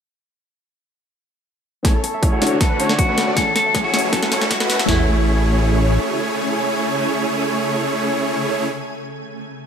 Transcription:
1.83 analog synth bass A1, supersaw synth A3 C#4 E4 G#4 C#5, synth pluck A3 B3 C#4 E4 G#5, harp G#4, clean electric guitar A4, digital synth lead C#5, kick, snare, closed hi-hat, riser
1.95 harp A4
2.04 clean electric guitar A4, harp C#5, closed hi-hat
2.14 harp E5
2.23 analog synth bass A1, supersaw synth A3 C#4 E4 G#4 C#5, harp G#4, digital synth lead C#5, kick, closed hi-hat
2.32 clean electric guitar F#4, harp A4
2.41 analog synth bass D2, supersaw synth A3 C#4 D4 F#4 C#5, synth pluck D4 E4 F#4 A4, digital synth lead C#5, harp C#5, snare, closed hi-hat
2.47 closed hi-hat
2.52 harp D5
2.61 analog synth bass D2, supersaw synth A3 C#4 D4 F#4 B4, harp F#4, clean electric guitar A4, digital synth lead B4, kick, snare, closed hi-hat
2.71 harp A4
2.80 analog synth bass D2, supersaw synth A3 C#4 D4 F#4 C#5, digital synth lead C#5, harp C#5, closed hi-hat
2.89 harp D5, snare
2.98 clean electric guitar F#4, harp F#4, kick, closed hi-hat
3.08 analog synth bass D2, supersaw synth A3 C#4 D4 F#4 B4, harp A4, digital synth lead B4
3.18 harp C#5, snare, closed hi-hat
3.27 analog synth bass D2, supersaw synth A3 C#4 D4 F#4 D5, harp D5, digital synth lead D5
3.35 analog synth bass A1, supersaw synth A3 C#4 E4 C#5, synth pluck A3 B3 C#4 E4 G#5, clean electric guitar A4, digital synth lead C#5, kick, snare, closed hi-hat
3.46 harp A4
3.55 clean electric guitar A4, harp C#5, snare, closed hi-hat
3.65 harp E5
3.75 analog synth bass A2, supersaw synth A3 C#4 E4 G#4 C#5, harp G#4, digital synth lead C#5, kick, snare, closed hi-hat
3.84 clean electric guitar F#4, harp A4
3.94 analog synth bass A1, supersaw synth A3 C#4 E4 G#4 C#5, harp C#5, digital synth lead C#5, snare, closed hi-hat
3.99 closed hi-hat
4.03 harp E5
4.11 analog synth bass F#1, synth pluck A3 C#4 E4 F#4 G#5, supersaw synth A3 C#4 E4 F#4 B4, harp F#4, clean electric guitar A4, digital synth lead B4, kick, snare, closed hi-hat
4.22 harp A4, snare
4.32 analog synth bass F#1, supersaw synth A3 C#4 E4 F#4 C#5, digital synth lead C#5, harp C#5, snare, closed hi-hat
4.41 harp E5, snare
4.51 harp F#4, clean electric guitar F#4, kick, snare, closed hi-hat
4.60 analog synth bass F#2, supersaw synth A3 C#4 E4 F#4 B4, harp A4, digital synth lead B4, snare
4.70 harp C#5, snare, closed hi-hat
4.79 analog synth bass F#1, supersaw synth A3 C#4 E4 F#4 E5, digital synth lead E5, harp E5, snare
4.86 analog synth bass A1, ambient pad C#3 A3 G#5, supersaw synth A3 C#4 E4 G#4 C#5, synth pluck B3 C#4 E4, clean electric guitar E4, harp G#4, digital synth lead C#5, snare, floor tom
4.90 synth pluck A3 G#4

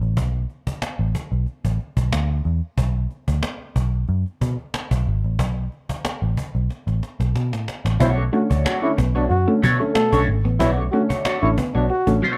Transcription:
0.01 picked electric bass A1, cajon slap
0.17 picked electric bass B1, cajon bass
0.50 cajon slap
0.67 muted picked electric bass stroke, cajon bass
0.82 cajon slap
0.99 picked electric bass A1
1.15 cajon bass, cajon slap
1.32 picked electric bass B1, cajon slap
1.46 cajon slap
1.65 picked electric bass A1, cajon bass
1.80 cajon slap
1.97 picked electric bass B1, cajon bass, cajon slap
2.12 picked electric bass D2, cajon slap
2.44 picked electric bass E2, cajon slap
2.77 picked electric bass B1, cajon bass
3.11 cajon slap
3.28 picked electric bass D2, cajon bass
3.43 cajon slap
3.76 picked electric bass B1, cajon bass, cajon slap
3.93 cajon slap
4.08 picked electric bass F#2, cajon slap
4.26 cajon slap
4.41 picked electric bass B2, cajon bass
4.59 cajon slap
4.74 cajon slap
4.91 picked electric bass B1, cajon bass
5.05 picked electric bass G#1, cajon slap
5.24 picked electric bass A1, cajon slap
5.39 picked electric bass B1, cajon bass
5.72 cajon slap
5.89 muted picked electric bass stroke, cajon bass
6.05 cajon slap
6.22 picked electric bass A1
6.37 cajon bass, cajon slap
6.55 picked electric bass B1, cajon slap
6.69 cajon slap
6.87 picked electric bass A1, cajon slap
7.03 cajon slap
7.20 picked electric bass B1, cajon slap
7.35 picked electric bass B2, cajon slap
7.52 picked electric bass A2, cajon slap
7.68 cajon slap
7.85 picked electric bass A1, cajon slap
8.00 picked electric bass B1, upright piano B2, clean electric guitar A3 B3 D4 F#4 C#5, trombone E4, cajon bass
8.17 upright piano A3 C#4, muted clean electric guitar stroke
8.33 upright piano D3 A3 C#4, clean electric guitar A3, trombone F#4, muted clean electric guitar stroke, cajon slap
8.50 picked electric bass D2, clean electric guitar A3 D4 F#4 C#5, cajon bass
8.64 clean electric guitar A3 D4 F#4 C#5, trombone F#4, muted clean electric guitar stroke, cajon slap
8.82 upright piano D3 A3 C#4, trombone E4
8.97 picked electric bass B1, clean electric guitar B3, muted clean electric guitar stroke, cajon bass, cajon slap
9.15 upright piano B2, clean electric guitar A3 B3 D4 F#4 C#5, trombone D4, cajon slap
9.29 picked electric bass F#2, trombone F#4, muted clean electric guitar stroke, cajon slap
9.47 upright piano D3 A3 C#4, clean electric guitar A3, muted clean electric guitar stroke, cajon slap
9.62 upright piano B2, picked electric bass B2, clean electric guitar F#3 A3 D4 F#4 C#5, cajon bass
9.80 upright piano D3 A3 C#4, muted clean electric guitar stroke, cajon slap
9.94 upright piano B2, clean electric guitar A3, trombone A4, muted clean electric guitar stroke, cajon slap
10.12 picked electric bass B1, upright piano D3 A3 C#4, clean electric guitar A3 D4 F#4 C#5, muted clean electric guitar stroke, cajon bass
10.28 picked electric bass G#1, upright piano A3 C#4, muted clean electric guitar stroke
10.44 picked electric bass A1, clean electric guitar B3, muted clean electric guitar stroke, cajon slap
10.59 picked electric bass B1, upright piano B2, clean electric guitar A3 B3 D4 F#4 C#5, trombone E4, cajon bass
10.78 upright piano A3 C#4, muted clean electric guitar stroke
10.92 upright piano D3 A3 C#4, clean electric guitar A3, trombone F#4, muted clean electric guitar stroke, cajon slap
11.09 clean electric guitar A3 D4 F#4 C#5, muted picked electric bass stroke, cajon bass
11.24 clean electric guitar A3 D4 F#4 C#5, trombone F#4, muted clean electric guitar stroke, cajon slap
11.42 picked electric bass A1, upright piano D3 A3 C#4, trombone E4
11.57 clean electric guitar B3, muted clean electric guitar stroke, cajon bass, cajon slap
11.75 picked electric bass B1, upright piano B2, clean electric guitar A3 B3 D4 F#4 C#5, trombone D4, cajon slap
11.89 trombone F#4, muted clean electric guitar stroke, cajon slap
12.07 picked electric bass A1, upright piano D3 A3 C#4, clean electric guitar A3, muted clean electric guitar stroke, cajon bass
12.22 upright piano B2, clean electric guitar F#3 A3 D4 F#4 C#5, cajon slap

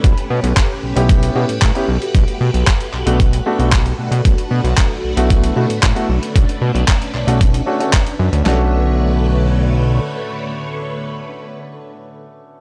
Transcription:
Already playing: string machine A3 C#4 B4
0.04 analog synth bass B1, string machine G4, kick, closed hi-hat
0.18 closed hi-hat
0.30 analog synth bass B2
0.43 analog synth bass B1, closed hi-hat
0.57 kick, clap, closed hi-hat
0.83 analog synth bass B1
0.96 analog synth bass B1, grand piano B3 C#4 E4 G4, closed hi-hat
1.09 kick, closed hi-hat
1.23 closed hi-hat
1.35 analog synth bass B2, grand piano B3 C#4 E4 G4
1.49 analog synth bass A2, closed hi-hat
1.62 analog synth bass A2, kick, clap, closed hi-hat
1.75 grand piano B3 C#4 E4 G4, closed hi-hat
1.88 analog synth bass B1, string machine A3 F#4
2.02 closed hi-hat
2.15 analog synth bass B1, kick, closed hi-hat
2.28 closed hi-hat
2.41 analog synth bass B2
2.54 analog synth bass B1, closed hi-hat
2.67 kick, clap, closed hi-hat
2.81 closed hi-hat
2.93 analog synth bass B1, clap
3.06 analog synth bass B1, grand piano A3 B3 D4 F#4, closed hi-hat
3.20 kick, closed hi-hat
3.33 closed hi-hat
3.46 grand piano A3 B3 D4 F#4
3.59 analog synth bass B1, grand piano A3 B3 D4 F#4, closed hi-hat
3.72 kick, clap, closed hi-hat
3.86 closed hi-hat
3.98 analog synth bass B2, string machine D4
4.11 analog synth bass B2, closed hi-hat
4.25 analog synth bass B1, kick, closed hi-hat
4.38 closed hi-hat
4.51 analog synth bass B2
4.64 analog synth bass B1, closed hi-hat
4.77 kick, clap, closed hi-hat
5.04 analog synth bass B1
5.17 analog synth bass B1, grand piano A3 B3 E4 F#4, closed hi-hat
5.30 kick, closed hi-hat
5.44 closed hi-hat
5.56 analog synth bass B2, grand piano A3 B3 E4 F#4
5.70 analog synth bass A2, closed hi-hat
5.83 analog synth bass A2, kick, clap, closed hi-hat
5.95 grand piano A3 B3 E4 F#4, closed hi-hat
6.09 analog synth bass B1, string machine C#4 B4
6.23 closed hi-hat
6.35 analog synth bass B1, kick, closed hi-hat
6.49 closed hi-hat
6.62 analog synth bass B2
6.75 analog synth bass B1, closed hi-hat
6.88 kick, clap, closed hi-hat
7.02 closed hi-hat
7.14 analog synth bass B1, clap
7.27 analog synth bass B1, grand piano A3 C#4 D4 F#4, closed hi-hat
7.41 kick, closed hi-hat
7.54 closed hi-hat
7.66 grand piano A3 C#4 D4 F#4
7.80 grand piano A3 C#4 D4 F#4, closed hi-hat
7.93 kick, clap, closed hi-hat
8.07 closed hi-hat
8.19 analog synth bass F#2
8.33 analog synth bass D2, closed hi-hat
8.44 analog synth bass B1, string machine D3 A3 B4 C#5, grand piano A3 C#4 D4 F#4, snare, clap

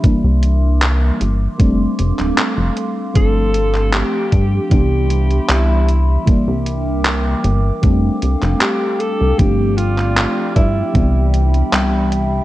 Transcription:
Already playing: ambient pad E5 C6
0.03 analog synth bass C2, fm electric piano E3 G3 A#3 D4, ambient pad A#4 D6, kick, closed hi-hat
0.24 analog synth bass C2
0.43 closed hi-hat
0.82 clap, closed hi-hat
1.21 analog synth bass G1, closed hi-hat
1.58 analog synth bass F1, fm electric piano G3 A3 C4 D4, ambient pad A4 F5, kick, closed hi-hat
1.99 analog synth bass F1, closed hi-hat
2.19 analog synth bass D1, clap, closed hi-hat
2.38 clap, closed hi-hat
2.58 analog synth bass F1
2.77 closed hi-hat
3.14 analog synth bass G1, fm electric piano F3 A3 C4 D4, ambient pad G4, alto saxophone A4, kick, closed hi-hat
3.54 closed hi-hat
3.74 clap
3.93 alto saxophone G4, clap, closed hi-hat
4.32 analog synth bass G2, kick, closed hi-hat
4.70 analog synth bass C2, fm electric piano E3 G3 B3 D4, alto saxophone G4, ambient pad E5 B5, kick, closed hi-hat
5.10 closed hi-hat
5.31 closed hi-hat
5.49 analog synth bass C2, alto saxophone E4, clap, closed hi-hat
5.89 closed hi-hat
6.25 analog synth bass C2, fm electric piano E3 G3 A#3 D4, ambient pad A#4 G5 D6, kick, closed hi-hat
6.48 analog synth bass C2
6.66 closed hi-hat
7.05 clap, closed hi-hat
7.44 analog synth bass G1, closed hi-hat
7.82 analog synth bass F1, fm electric piano G3 A3 C4 D4, ambient pad A4 F5, kick, closed hi-hat
8.22 analog synth bass C2, closed hi-hat
8.42 analog synth bass F1, clap, closed hi-hat
8.61 alto saxophone G4, clap, closed hi-hat
9.00 alto saxophone A4, closed hi-hat
9.21 analog synth bass C2
9.38 analog synth bass G1, fm electric piano F3 A3 C4 D4, alto saxophone G4, ambient pad G4 D5, kick, closed hi-hat
9.77 alto saxophone F4, closed hi-hat
9.98 clap
10.17 clap, closed hi-hat
10.56 analog synth bass G2, alto saxophone E4, kick, closed hi-hat
10.93 analog synth bass C2, fm electric piano E3 G3 B3 D4, ambient pad E5 B5, kick, closed hi-hat
11.34 closed hi-hat
11.54 closed hi-hat
11.73 analog synth bass C2, clap, closed hi-hat
12.12 closed hi-hat

